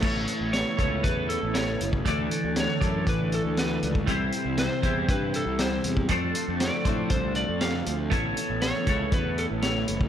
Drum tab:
CC |x---------------|----------------|----------------|----------------|
HH |--x-x-x-x-x-x-x-|x-x-x-x-x-x-x-x-|x-x-x-x-x-x-x-x-|x-x-x-x-x-x-x-x-|
SD |----o-------o---|----o-------o---|----o-------o---|----o-------o---|
BD |o-----o-o------o|o-----o-o------o|o-----o-o------o|o-----o-o-------|

CC |----------------|
HH |x-x-x-x-x-x-x-x-|
SD |----o-------o---|
BD |o-----o-o------o|